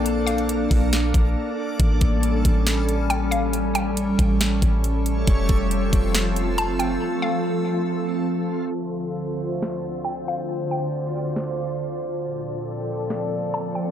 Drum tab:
HH |x-xxx-o-x-x-----|x-x-x-x-x-x-x-x-|x-x-x-x-x-x-x-x-|x-x-x-x-x-x-x-x-|
SD |--------o-------|--------o-------|--------o-------|--------o-------|
BD |------o---o-----|o-o---o---------|------o---o-----|o-o---o---------|

HH |----------------|----------------|----------------|----------------|
SD |----------------|--------o-------|--------o-------|--------o-------|
BD |----------------|----------------|----------------|----------------|